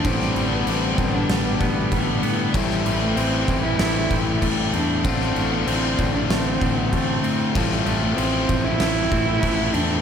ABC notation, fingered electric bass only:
X:1
M:4/4
L:1/8
Q:1/4=96
K:Am
V:1 name="Fingered electric bass" clef=bass
A,,, A,,, A,,, A,,, A,,, A,,, A,,, A,, | A,,, A,,, A,,, A,,, A,,, A,,, A,,, E,, | A,,, A,,, A,,, A,,, A,,, A,,, A,,, A,, | A,,, A,,, A,,, A,,, A,,, A,,, A,,, E,, |]